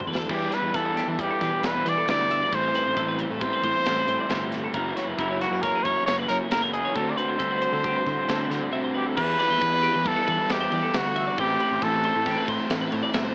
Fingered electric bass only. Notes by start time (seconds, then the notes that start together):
0.07 E2
0.29 E2
0.62 E2
0.74 E2
1.07 E3
1.19 E2
1.41 E3
1.63 E2
1.86 E3
2.08 D2
2.52 A1
2.86 A1
2.97 A1
3.30 A2
3.41 A1
3.63 A2
3.85 A1
4.07 A2
4.29 G1
4.74 F#1
5.07 F#1
5.18 F#1
5.51 F#2
5.63 F#1
5.85 F#2
6.07 F#1
6.29 F#2
6.50 F#1
6.96 D2
7.28 D2
7.40 D2
7.72 D3
7.84 D2
8.06 D3
8.28 D2
8.50 D3
9.17 E2
9.50 E2
9.61 E2
9.95 E3
10.05 E2
10.28 E3
10.49 E2
10.72 E3
10.94 D2
11.38 A1
11.71 A1
11.82 A1
12.15 A2
12.26 A1
12.48 A2
12.69 A1
12.93 A2
13.14 G1